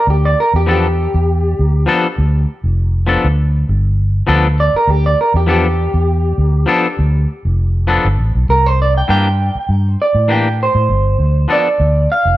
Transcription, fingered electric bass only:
0, 0, Header, 1, 3, 480
1, 0, Start_track
1, 0, Tempo, 600601
1, 1021, Time_signature, 4, 2, 24, 8
1, 9886, End_track
2, 0, Start_track
2, 0, Title_t, "Fingered electric bass"
2, 0, Program_c, 0, 33
2, 57, Note_on_c, 0, 38, 84
2, 269, Note_off_c, 0, 38, 0
2, 428, Note_on_c, 0, 40, 81
2, 848, Note_off_c, 0, 40, 0
2, 913, Note_on_c, 0, 40, 83
2, 1221, Note_off_c, 0, 40, 0
2, 1273, Note_on_c, 0, 38, 83
2, 1478, Note_off_c, 0, 38, 0
2, 1745, Note_on_c, 0, 38, 93
2, 1953, Note_off_c, 0, 38, 0
2, 2107, Note_on_c, 0, 29, 85
2, 2527, Note_off_c, 0, 29, 0
2, 2593, Note_on_c, 0, 38, 80
2, 2900, Note_off_c, 0, 38, 0
2, 2948, Note_on_c, 0, 31, 93
2, 3365, Note_off_c, 0, 31, 0
2, 3423, Note_on_c, 0, 38, 93
2, 3742, Note_off_c, 0, 38, 0
2, 3896, Note_on_c, 0, 38, 81
2, 4108, Note_off_c, 0, 38, 0
2, 4268, Note_on_c, 0, 40, 90
2, 4687, Note_off_c, 0, 40, 0
2, 4747, Note_on_c, 0, 40, 85
2, 5057, Note_off_c, 0, 40, 0
2, 5098, Note_on_c, 0, 38, 85
2, 5309, Note_off_c, 0, 38, 0
2, 5585, Note_on_c, 0, 38, 92
2, 5793, Note_off_c, 0, 38, 0
2, 5954, Note_on_c, 0, 29, 80
2, 6370, Note_off_c, 0, 29, 0
2, 6432, Note_on_c, 0, 31, 74
2, 6532, Note_off_c, 0, 31, 0
2, 6543, Note_on_c, 0, 33, 72
2, 6654, Note_off_c, 0, 33, 0
2, 6675, Note_on_c, 0, 35, 76
2, 6774, Note_off_c, 0, 35, 0
2, 6785, Note_on_c, 0, 36, 90
2, 7203, Note_off_c, 0, 36, 0
2, 7266, Note_on_c, 0, 43, 92
2, 7583, Note_off_c, 0, 43, 0
2, 7742, Note_on_c, 0, 43, 81
2, 7952, Note_off_c, 0, 43, 0
2, 8109, Note_on_c, 0, 45, 85
2, 8528, Note_off_c, 0, 45, 0
2, 8590, Note_on_c, 0, 45, 82
2, 8689, Note_off_c, 0, 45, 0
2, 8704, Note_on_c, 0, 31, 99
2, 8913, Note_off_c, 0, 31, 0
2, 8940, Note_on_c, 0, 38, 74
2, 9150, Note_off_c, 0, 38, 0
2, 9428, Note_on_c, 0, 38, 91
2, 9636, Note_off_c, 0, 38, 0
2, 9792, Note_on_c, 0, 29, 77
2, 9886, Note_off_c, 0, 29, 0
2, 9886, End_track
3, 0, Start_track
3, 0, Title_t, "Muted fingered electric bass strokes"
3, 3789, Note_on_c, 9, 29, 37
3, 3869, Note_off_c, 9, 29, 0
3, 7634, Note_on_c, 9, 29, 34
3, 7714, Note_off_c, 9, 29, 0
3, 9886, End_track
0, 0, End_of_file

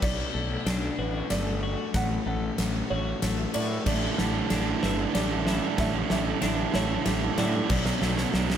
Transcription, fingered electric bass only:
0, 0, Header, 1, 2, 480
1, 0, Start_track
1, 0, Tempo, 639659
1, 20, Time_signature, 3, 2, 24, 8
1, 6434, End_track
2, 0, Start_track
2, 0, Title_t, "Fingered electric bass"
2, 0, Program_c, 0, 33
2, 18, Note_on_c, 0, 35, 78
2, 184, Note_off_c, 0, 35, 0
2, 260, Note_on_c, 0, 35, 81
2, 425, Note_off_c, 0, 35, 0
2, 498, Note_on_c, 0, 35, 88
2, 664, Note_off_c, 0, 35, 0
2, 738, Note_on_c, 0, 33, 73
2, 904, Note_off_c, 0, 33, 0
2, 981, Note_on_c, 0, 31, 83
2, 1311, Note_off_c, 0, 31, 0
2, 1460, Note_on_c, 0, 33, 80
2, 1626, Note_off_c, 0, 33, 0
2, 1695, Note_on_c, 0, 33, 76
2, 1863, Note_off_c, 0, 33, 0
2, 1940, Note_on_c, 0, 33, 88
2, 2106, Note_off_c, 0, 33, 0
2, 2181, Note_on_c, 0, 33, 80
2, 2347, Note_off_c, 0, 33, 0
2, 2422, Note_on_c, 0, 33, 82
2, 2587, Note_off_c, 0, 33, 0
2, 2666, Note_on_c, 0, 45, 69
2, 2830, Note_off_c, 0, 45, 0
2, 2899, Note_on_c, 0, 33, 78
2, 3065, Note_off_c, 0, 33, 0
2, 3146, Note_on_c, 0, 33, 85
2, 3310, Note_off_c, 0, 33, 0
2, 3385, Note_on_c, 0, 33, 87
2, 3549, Note_off_c, 0, 33, 0
2, 3625, Note_on_c, 0, 31, 77
2, 3789, Note_off_c, 0, 31, 0
2, 3865, Note_on_c, 0, 33, 76
2, 4193, Note_off_c, 0, 33, 0
2, 4343, Note_on_c, 0, 33, 83
2, 4507, Note_off_c, 0, 33, 0
2, 4585, Note_on_c, 0, 33, 86
2, 4749, Note_off_c, 0, 33, 0
2, 4824, Note_on_c, 0, 33, 88
2, 4988, Note_off_c, 0, 33, 0
2, 5062, Note_on_c, 0, 33, 83
2, 5226, Note_off_c, 0, 33, 0
2, 5300, Note_on_c, 0, 33, 88
2, 5465, Note_off_c, 0, 33, 0
2, 5537, Note_on_c, 0, 45, 91
2, 5702, Note_off_c, 0, 45, 0
2, 5778, Note_on_c, 0, 35, 92
2, 5943, Note_off_c, 0, 35, 0
2, 6017, Note_on_c, 0, 35, 90
2, 6182, Note_off_c, 0, 35, 0
2, 6256, Note_on_c, 0, 35, 85
2, 6421, Note_off_c, 0, 35, 0
2, 6434, End_track
0, 0, End_of_file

